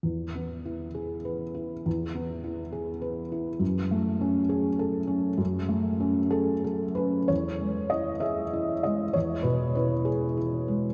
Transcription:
\new Staff \with { instrumentName = "Felt piano" } { \time 6/8 \key e \major \tempo 4. = 66 << { r2. | r2. | r2. | r4. a'4 b'8 |
cis''4 dis''8 e''4 dis''8 | cis''8 b'8 b'8 gis'8 r4 | } \\ { e,8 b8 e'8 gis'8 b'8 e'8 | e,8 b8 e'8 gis'8 b'8 e'8 | fis,8 a8 cis'8 gis'8 a'8 cis'8 | fis,8 a8 cis'8 gis'8 a'8 cis'8 |
e,8 gis8 e'8 gis'8 e'8 gis8 | e,8 b,8 e'4 e'8 gis8 | } >> }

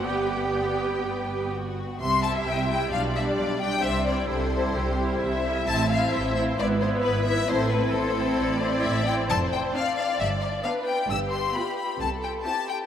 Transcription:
<<
  \new Staff \with { instrumentName = "Violin section" } { \time 4/4 \key g \major \tempo 4 = 132 b'4 d''8 b'4. fis'4 | \key c \major c'''8 a''8 g''8 g''8 f''8 e''8 d''8 g''8 | e''8 d''8 c''2~ c''8 r8 | a''8 f''8 e''8 e''8 d''8 c''8 b'8 e''8 |
c''8 b'8 a'4. c''8 e''8 g''8 | a''8 g''8 f''8 f''8 e''8 d''8 f''8 g''8 | e'''8 c'''8 b''8 b''8 a''8 g''8 a''8 g''8 | }
  \new Staff \with { instrumentName = "Violin section" } { \time 4/4 \key g \major g''2. r4 | \key c \major e''2 d''2 | c''4 a'4 g'4 e''4~ | e''4 c''4 b'2 |
a'4 c''4 d''2 | c''4 d''2 b'4 | g'2 a'4 g'4 | }
  \new Staff \with { instrumentName = "Viola section" } { \time 4/4 \key g \major b2.~ b8 r8 | \key c \major r8 <g e'>4 <g e'>8 <g d'>8 <g d'>4 <g d'>8 | r8 <g e'>4 <g e'>4 <g e'>4 <g e'>8 | <c' e'>8 <c' e'>4 <c' e'>8 <b e'>8 <b e'>4 <b e'>8 |
<c' e'>8 <c' e'>4 <c' e'>4 <c' e'>4 <c' e'>8 | r4 <c' d'>4 r4 <b d'>4 | r4 <b f'>4 r4 <c' e'>4 | }
  \new Staff \with { instrumentName = "Cello section" } { \clef bass \time 4/4 \key g \major g'2. r4 | \key c \major c4 c4 b,4 b,4 | c4 c4 c4 c4 | a,4 a,4 gis,4 gis,4 |
a,4 a,4 a,4 a,4 | f,4 r4 g,4 r4 | g,4 r4 c4 r4 | }
  \new Staff \with { instrumentName = "Double bass section" } { \clef bass \time 4/4 \key g \major g,,2.~ g,,8 r8 | \key c \major c,4 c,4 b,,4 b,,4 | c,4 c,4 c,4 c,4 | a,,4 a,,4 gis,,4 gis,,4 |
a,,4 a,,4 a,,4 a,,4 | f,,4 r4 g,,4 r4 | g,,4 r4 c,4 r4 | }
>>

